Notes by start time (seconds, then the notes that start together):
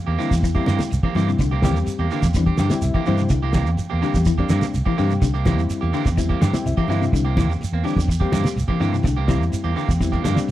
0.07 E2 A#3 C4 G4
0.18 D3 E3 G3 A#3 C4 E4 G4, open hi-hat, shekere
0.31 E2, kick, high conga, low conga, shekere
0.43 E3, kick, closed hi-hat, shekere
0.55 G3 A#3 C4 E4 G4, kick, closed hi-hat
0.66 G2 E3 A#3 C4 G4, snare, closed hi-hat, high conga, shekere
0.79 muted fingered electric bass stroke, snare, closed hi-hat, low conga, shekere
0.90 C2, closed hi-hat, shekere
1.03 E3 A#3 C4 G4, kick, high conga
1.15 G2 D3 E3 G3 A#3 C4 E4 G4, open hi-hat, high conga, shekere
1.27 C3, snare, closed hi-hat, shekere
1.38 C2 D3, kick, closed hi-hat, low conga, shekere
1.51 A#3 C4 G4
1.62 E3 G3 A#3 C4 G4, kick, snare, closed hi-hat, high conga, shekere
1.74 E2, snare, closed hi-hat, shekere
1.86 muted fingered electric bass stroke, snare, closed hi-hat, shekere
1.98 E2 A#3 C4 G4, closed hi-hat
2.10 D3 E3 A#3 C4 G4, open hi-hat, shekere
2.22 E2, kick, snare, closed hi-hat, high conga, low conga, shekere
2.33 E3 G3 C4 D4, kick, closed hi-hat, high conga, shekere
2.46 C4 G4, kick, closed hi-hat
2.57 G2 D3 E3 C4 G4 G5, snare, closed hi-hat, high conga, shekere
2.70 G3 C4 E4, muted fingered electric bass stroke, snare, closed hi-hat, low conga, shekere
2.82 C2 E5, snare, closed hi-hat, shekere
2.94 E3 A#3 C4 G4, kick, closed hi-hat, high conga
3.06 G2 D3 E3 G3 A#3 C4 E4 G4 C5, open hi-hat, high conga, shekere
3.18 C3, snare, closed hi-hat, shekere
3.29 C2 D3, kick, snare, closed hi-hat, low conga, shekere
3.42 A#3 C4 G4, closed hi-hat
3.53 E3 A#3 C4 G4, kick, snare, closed hi-hat, high conga, shekere
3.66 E2, closed hi-hat, high conga, shekere
3.77 muted fingered electric bass stroke, closed hi-hat, shekere
3.90 E2 A#3 C4 G4
4.01 D3 E3 G3 A#3 C4 G4, open hi-hat, shekere
4.14 E2, kick, snare, high conga, shekere
4.25 E3, kick, closed hi-hat, high conga, shekere
4.38 G3 A#3 C4 D4 G4, kick, closed hi-hat
4.49 G2 E3 A#3 C4 G4, snare, closed hi-hat, high conga, shekere
4.61 muted fingered electric bass stroke, snare, closed hi-hat, low conga, shekere
4.74 C2, closed hi-hat, shekere
4.86 E3 A#3 C4 G4, kick, high conga
4.97 G2 D3 E3 G3 A#3 C4 G4, open hi-hat, shekere
5.10 C3, closed hi-hat, shekere
5.21 C2 D3, kick, snare, closed hi-hat, low conga, shekere
5.34 A#3 C4 G4, snare
5.45 E3 G3 A#3 C4 E4 G4, kick, snare, closed hi-hat, high conga, shekere
5.58 E2, snare, closed hi-hat, shekere
5.70 muted fingered electric bass stroke, snare, closed hi-hat, shekere
5.81 E2 A#3 G4, closed hi-hat
5.93 D3 E3 A#3 C4 G4, open hi-hat, shekere
6.05 E2, kick, snare, closed hi-hat, high conga, low conga, shekere
6.17 E3 G3 C4 E4, kick, closed hi-hat, high conga, shekere
6.29 A#3 C4 G4, kick, closed hi-hat
6.41 G2 D3 E3 C4 G4 G5, snare, closed hi-hat, high conga, shekere
6.53 G3 C4 E4, muted fingered electric bass stroke, snare, closed hi-hat, low conga, shekere
6.66 C2 E5, closed hi-hat, shekere
6.77 E3 A#3 C4 G4, kick, closed hi-hat, high conga
6.88 G2 D3 E3 G3 A#3 C4 E4 G4, open hi-hat, high conga, shekere
7.01 C3, snare, closed hi-hat, shekere
7.13 C2 D3, kick, closed hi-hat, low conga, shekere
7.24 A#3 C4 G4, closed hi-hat
7.37 E3 A#3 C4 G4, kick, snare, closed hi-hat, high conga, shekere
7.48 E2, snare, closed hi-hat, high conga, shekere
7.60 muted fingered electric bass stroke, snare, closed hi-hat, shekere
7.73 E2 A#3 C4
7.84 D3 E3 G3 C4 D4 G4, muted clean electric guitar stroke, open hi-hat, shekere
7.96 E2, kick, high conga, low conga, shekere
8.08 muted clean electric guitar stroke, kick, closed hi-hat, shekere
8.20 G3 A#3 C4 G4, kick, closed hi-hat
8.32 G2 D3 E3 A#3 C4 G4, snare, closed hi-hat, high conga, shekere
8.44 muted fingered electric bass stroke, snare, closed hi-hat, low conga, shekere
8.56 C2, snare, closed hi-hat, shekere
8.68 E3 A#3 C4 G4, kick, high conga
8.80 G2 D3 E3 G3 A#3 C4 E4 G4, open hi-hat, high conga, shekere
8.92 C3, closed hi-hat, shekere
9.03 C2 D3, kick, snare, closed hi-hat, low conga, shekere
9.17 A#3 C4 G4
9.28 E3 G3 A#3 C4 E4 G4, kick, snare, closed hi-hat, high conga, shekere
9.40 E2, closed hi-hat, shekere
9.52 muted fingered electric bass stroke, closed hi-hat, shekere
9.64 E2 A#3 C4 G4, closed hi-hat
9.75 D3 E3 A#3 C4 G4, open hi-hat, shekere
9.88 E2, kick, closed hi-hat, high conga, low conga, shekere
10.00 E3 G3 C4 E4, kick, closed hi-hat, high conga, shekere
10.12 A#3 C4 G4, kick, snare, closed hi-hat
10.23 G2 D3 E3 A#3 C4 G4, snare, closed hi-hat, high conga, shekere
10.35 G3 C4 D4, muted fingered electric bass stroke, snare, closed hi-hat, low conga, shekere
10.48 closed hi-hat